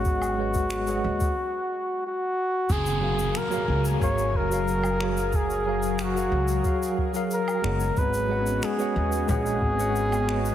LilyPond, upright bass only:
\new Staff \with { instrumentName = "Upright bass" } { \clef bass \time 4/4 \key fis \major \tempo 4 = 91 gis,,4. dis,8 r2 | fis,,4 r8 cis,8 gis,,8 fis,,4.~ | fis,,4. cis,8 r4. fis,,8 | gis,,4 r8 dis,8 ais,,8 gis,,4. | }